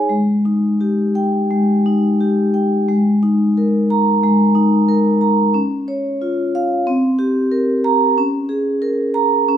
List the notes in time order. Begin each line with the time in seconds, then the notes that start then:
Already playing: D#4 G#4 C#5 G#5
0.09 G#3
0.46 D#4
0.81 G4
1.15 G5
1.51 G#3
1.86 D#4
2.21 G4
2.54 G5
2.88 G#3
3.23 D#4
3.58 A#4
3.90 A#5
4.23 G#3
4.55 D#4
4.89 A#4
5.21 A#5
5.54 C#4
5.88 C#5
6.22 F4
6.55 F5
6.87 C4
7.19 G4
7.52 A#4
7.84 A#5
8.18 C#4
8.49 G#4
8.82 A#4
9.14 A#5
9.48 C#4